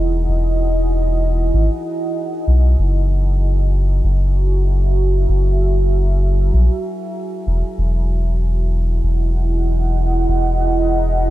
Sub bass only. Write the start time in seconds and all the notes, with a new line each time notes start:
Already playing: E1
0.28 E1
1.53 G#1
2.47 B1
2.78 F#1
4.04 F#1
5.29 F#1
6.53 A#1
7.47 E1
7.78 E1
9.03 E1
10.28 E1